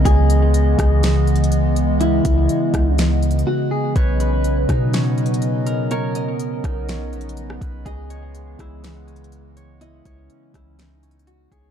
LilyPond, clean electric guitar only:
\new Staff \with { instrumentName = "Clean electric guitar" } { \time 4/4 \key cis \dorian \tempo 4 = 123 gis'1 | e'2 r4 fis'8 gis'8 | b'1 | ais'1 |
gis'1 | e'2 r4 fis'8 gis'8 | }